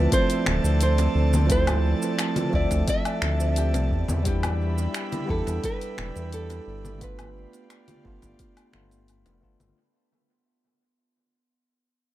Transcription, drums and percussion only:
0.12 kick, open hi-hat, cabasa
0.30 open hi-hat, cabasa
0.46 finger snap, high conga, low conga
0.65 cabasa
0.81 open hi-hat, cabasa
0.98 open hi-hat, high bongo, cabasa
1.33 high conga, cabasa
1.50 kick, open hi-hat, cabasa
1.67 open hi-hat, low conga, cabasa, low woodblock
2.02 cabasa
2.19 finger snap, open hi-hat, cabasa
2.36 open hi-hat, high conga, cabasa
2.54 kick
2.71 kick, open hi-hat, high bongo, cabasa
2.88 kick, open hi-hat, cabasa
3.05 open hi-hat, cabasa, low woodblock
3.22 finger snap, high conga
3.40 cabasa
3.56 open hi-hat, cabasa
3.74 open hi-hat, high bongo, cabasa
3.91 kick
4.08 high conga, low conga, cabasa
4.25 kick, open hi-hat, cabasa
4.43 open hi-hat, low conga, cabasa, low woodblock
4.78 cabasa
4.94 finger snap, open hi-hat, cabasa
5.12 open hi-hat, high conga, cabasa
5.29 kick
5.47 open hi-hat, high bongo, cabasa
5.64 kick, open hi-hat, cabasa
5.81 open hi-hat, cabasa
5.98 finger snap, high conga, low conga
6.16 cabasa
6.32 open hi-hat, cabasa
6.50 open hi-hat, high bongo, cabasa
6.85 high conga, cabasa
7.01 kick, open hi-hat, cabasa
7.19 open hi-hat, low conga, cabasa, low woodblock
7.53 open hi-hat, cabasa
7.70 finger snap, open hi-hat, cabasa
7.88 open hi-hat, high conga, cabasa
8.05 kick
8.22 kick, open hi-hat, high bongo, cabasa
8.39 kick, open hi-hat, cabasa
8.57 open hi-hat, cabasa, low woodblock
8.73 finger snap, high conga
8.91 open hi-hat, cabasa
9.08 open hi-hat, cabasa
9.26 open hi-hat, high bongo, cabasa
9.43 kick
9.60 open hi-hat, high conga, low conga, cabasa

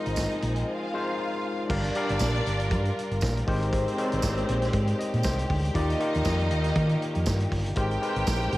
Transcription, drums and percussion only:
0.06 closed hi-hat
0.16 kick, snare, tambourine
0.31 closed hi-hat
0.42 closed hi-hat
0.56 closed hi-hat
1.70 kick, crash
1.84 closed hi-hat
1.95 closed hi-hat
2.09 closed hi-hat
2.19 kick, snare, tambourine
2.35 closed hi-hat
2.46 closed hi-hat
2.60 closed hi-hat
2.71 kick, closed hi-hat
2.85 closed hi-hat
2.99 closed hi-hat
3.11 closed hi-hat
3.21 kick, snare, tambourine
3.37 closed hi-hat
3.48 kick, open hi-hat
3.62 closed hi-hat
3.73 kick, closed hi-hat
3.88 closed hi-hat
3.98 closed hi-hat
4.12 closed hi-hat
4.22 kick, snare, tambourine
4.37 closed hi-hat
4.49 closed hi-hat
4.62 snare, closed hi-hat
4.73 kick, closed hi-hat
4.87 closed hi-hat
5.00 closed hi-hat
5.14 closed hi-hat
5.23 kick, snare, tambourine
5.39 closed hi-hat
5.50 kick, open hi-hat
5.65 closed hi-hat
5.75 kick, closed hi-hat
5.90 closed hi-hat
6.00 closed hi-hat
6.14 closed hi-hat
6.25 kick, snare, tambourine
6.39 closed hi-hat
6.51 closed hi-hat
6.64 snare, closed hi-hat
6.75 kick, closed hi-hat
6.89 closed hi-hat
7.02 closed hi-hat
7.15 closed hi-hat
7.26 kick, snare, tambourine
7.40 closed hi-hat
7.52 kick, open hi-hat
7.66 closed hi-hat
7.76 kick, closed hi-hat
7.91 closed hi-hat
8.03 closed hi-hat
8.16 closed hi-hat
8.27 kick, snare, tambourine
8.41 closed hi-hat
8.52 closed hi-hat

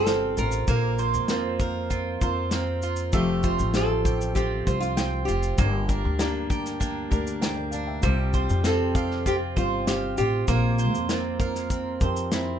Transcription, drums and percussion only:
0.07 snare, shaker
0.37 shaker
0.52 shaker
0.68 kick, shaker
0.98 shaker
1.14 shaker
1.28 snare, shaker
1.60 kick, shaker
1.91 kick, shaker
2.21 kick, shaker
2.51 snare, shaker
2.82 shaker
2.96 shaker
3.12 kick, shaker
3.43 kick, shaker
3.59 shaker
3.74 snare, shaker
4.05 kick, shaker
4.21 shaker
4.36 kick, shaker
4.67 kick, shaker
4.82 shaker
4.97 snare, shaker
5.28 shaker
5.43 shaker
5.58 kick, shaker
5.89 kick, shaker
6.19 snare, shaker
6.50 kick, shaker
6.65 snare, shaker
6.81 kick, shaker
7.12 kick, shaker
7.27 shaker
7.42 snare, shaker
7.72 shaker
8.03 kick, shaker
8.34 kick, shaker
8.49 shaker
8.64 snare, shaker
8.95 kick, shaker
9.11 snare
9.26 kick, shaker
9.57 kick, shaker
9.87 snare, shaker
10.18 shaker
10.48 kick, shaker
10.79 shaker
10.95 shaker
11.09 snare, shaker
11.40 kick, shaker
11.55 snare, shaker
11.70 kick, shaker
12.01 kick, shaker
12.16 shaker
12.32 snare, shaker

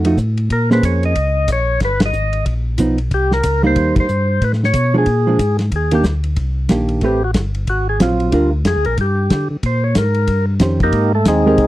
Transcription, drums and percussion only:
0.05 ride
0.17 kick, hi-hat pedal
0.37 ride
0.50 kick, ride
0.71 snare
0.83 kick, hi-hat pedal, ride
1.03 ride
1.15 kick, ride
1.48 kick, hi-hat pedal, ride
1.80 kick, snare, ride
2.00 snare, ride
2.13 hi-hat pedal
2.33 ride
2.46 kick, ride
2.78 kick, hi-hat pedal, ride
2.98 ride
3.11 kick, ride
3.31 snare
3.43 kick, hi-hat pedal, ride
3.76 kick, ride
3.96 kick, ride
4.09 hi-hat pedal
4.42 kick, ride
4.53 snare
4.63 snare
4.74 kick, hi-hat pedal, ride
5.06 kick, ride
5.39 kick, hi-hat pedal, ride
5.59 snare, ride
5.72 kick, ride
5.91 ride
6.03 kick, snare, hi-hat pedal
6.24 ride
6.36 kick, ride
6.69 kick, snare, hi-hat pedal, ride
6.89 ride
7.01 kick, ride
7.34 kick, snare, hi-hat pedal, ride
7.55 ride
7.67 kick, ride
8.00 kick, snare, hi-hat pedal, ride
8.20 ride
8.32 kick, ride
8.65 kick, snare, hi-hat pedal, ride
8.85 ride
8.98 kick, ride
9.30 kick, snare, hi-hat pedal, ride
9.63 kick, ride
9.95 kick, snare, hi-hat pedal, ride
10.14 ride
10.27 kick, ride
10.60 kick, snare, hi-hat pedal, ride
10.80 kick, ride
10.93 kick, ride
11.25 kick, snare, hi-hat pedal, ride
11.58 kick, ride

